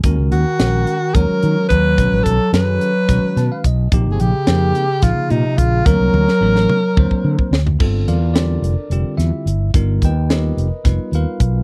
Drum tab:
CC |--------------|--------------|--------------|--------------|
HH |x-x-x-x-x-x-x-|x-x-x-x-x-x-x-|x-x-x-x-x-x-x-|x-------------|
SD |----o---------|----o---o-o---|----o---o-----|---o-o------o-|
T1 |--------------|--------------|--------------|--o-----------|
T2 |--------------|--------------|--------------|------o-------|
FT |--------------|--------------|--------------|-------------o|
BD |o-------o---o-|o-o-----o---o-|o-------o---o-|o-------oo-o--|

CC |x-------------|--------------|
HH |--x-x-x-x-x-x-|x-x-x-x-x-x-x-|
SD |----o-----o---|----o---o-----|
T1 |--------------|--------------|
T2 |--------------|--------------|
FT |--------------|--------------|
BD |o-------------|o-o-----o---o-|